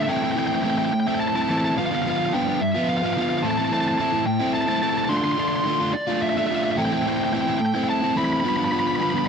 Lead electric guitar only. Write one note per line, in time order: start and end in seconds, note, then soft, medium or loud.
0.03 0.10 E5 medium
0.09 0.16 G5 loud
0.17 0.23 G5 medium
0.24 0.31 G5 medium
0.32 0.39 G5 medium
0.39 0.47 G5 medium
0.47 0.54 G5 medium
0.55 0.63 G5 medium
0.63 0.70 G5 loud
0.70 0.78 G5 medium
0.78 0.85 G5 medium
0.85 0.92 G5 medium
0.93 1.00 G5 medium
1.00 1.07 G5 medium
1.08 1.15 G5 medium
1.15 1.20 G5 medium
1.20 1.28 A5 loud
1.28 1.35 A5 medium
1.36 1.41 A5 medium
1.42 1.49 A5 medium
1.49 1.57 A5 medium
1.58 1.65 A5 medium
1.65 1.72 A5 medium
1.78 1.86 F5 loud
1.86 1.94 F5 medium
1.95 2.02 F5 loud
2.02 2.10 F5 medium
2.10 2.17 F5 loud
2.17 2.25 F5 medium
2.26 2.34 F5 medium
2.33 2.61 G5 loud
2.61 2.87 E5 loud
2.89 2.97 F5 loud
2.97 3.05 F5 medium
3.06 3.13 F5 loud
3.13 3.21 F5 medium
3.22 3.29 F5 medium
3.29 3.38 F5 medium
3.38 3.46 F5 medium
3.43 3.50 A5 loud
3.51 3.58 A5 medium
3.58 3.65 A5 medium
3.65 3.73 A5 medium
3.73 3.81 A5 loud
3.81 3.88 A5 medium
3.88 3.96 A5 medium
3.98 4.26 A5 loud
4.26 4.53 G5 loud
4.54 4.61 A5 loud
4.61 4.69 A5 medium
4.69 4.75 A5 loud
4.76 4.82 A5 medium
4.83 4.90 A5 loud
4.90 4.97 A5 medium
4.98 5.05 A5 medium
5.05 5.12 A5 medium
5.09 5.17 C6 loud
5.17 5.24 C6 medium
5.24 5.31 C6 loud
5.32 5.40 C6 medium
5.40 5.48 C6 loud
5.48 5.56 C6 medium
5.56 5.64 C6 medium
5.64 5.94 C6 loud
5.93 6.22 D5 loud
6.22 6.29 E5 loud
6.29 6.37 E5 medium
6.38 6.46 E5 loud
6.47 6.55 E5 medium
6.55 6.64 E5 loud
6.64 6.71 E5 medium
6.72 6.80 E5 medium
6.77 6.85 G5 loud
6.85 6.93 G5 medium
6.93 7.01 G5 loud
7.02 7.09 G5 medium
7.09 7.16 G5 medium
7.17 7.23 G5 medium
7.24 7.32 G5 medium
7.33 7.41 G5 loud
7.41 7.49 G5 medium
7.50 7.58 G5 medium
7.58 7.65 G5 medium
7.66 7.74 G5 medium
7.75 7.83 G5 medium
7.84 7.89 G5 medium
7.89 8.18 A5 loud
8.17 8.25 B5 loud
8.25 8.32 B5 medium
8.33 8.40 B5 medium
8.40 8.48 B5 medium
8.49 8.56 B5 medium
8.56 8.64 B5 medium
8.64 8.71 B5 medium
8.72 8.79 B5 medium
8.80 8.87 B5 medium
8.87 8.95 B5 medium
8.96 9.02 B5 medium
9.03 9.10 B5 medium
9.10 9.18 B5 medium
9.18 9.26 B5 medium